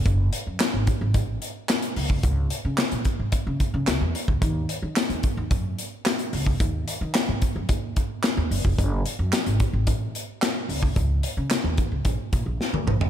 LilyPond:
<<
  \new Staff \with { instrumentName = "Upright bass" } { \clef bass \time 4/4 \key ges \mixolydian \tempo 4 = 110 ges,,8 r16 ges,16 r16 aes,,16 r16 aes,,16 a,,8 r4 des,8 | des,8 r16 des16 r16 bes,16 r16 aes,16 r16 des16 r16 des16 des,16 fes,16 r16 des,16 | ees,8 r16 ees16 r16 ees,16 r16 ees,16 ges,8 r4 des,8 | ees,8 r16 ees16 r16 aes,16 r16 ges,16 ees,8 r8. ees,16 ges,,16 f,,16 |
ges,,8 r16 ges,16 r16 aes,,16 r16 aes,,16 a,,8 r4 des,8 | des,8 r16 des16 r16 ees,16 r16 des,16 bes,,16 r16 bes,16 bes,,16 r16 d,16 bes,,16 d,16 | }
  \new DrumStaff \with { instrumentName = "Drums" } \drummode { \time 4/4 <hh bd>8 hh8 <hc hh sn>8 <hh bd>8 <hh bd>8 hh8 <hc hh sn>16 hh16 hho16 bd16 | <hh bd>8 hh8 <hc hh sn>16 hh16 <hh bd>8 <hh bd>8 <hh bd>8 <hc hh sn>8 hh16 bd16 | <hh bd>8 hh8 <hc hh sn>16 hh16 <hh bd>8 <hh bd>8 hh8 <hc hh sn>16 hh16 hho16 bd16 | <hh bd>8 hh8 <hc hh sn>8 <hh bd>8 <hh bd>8 <hh bd>8 <hc hh sn>8 hho16 bd16 |
<hh bd>8 hh8 <hc hh sn>16 hh16 <hh bd>8 <hh bd>8 hh8 <hc hh sn>8 hho16 bd16 | <hh bd>8 hh8 <hc hh sn>8 <hh bd>8 <hh bd>8 <hh bd>8 sn16 tommh16 toml16 tomfh16 | }
>>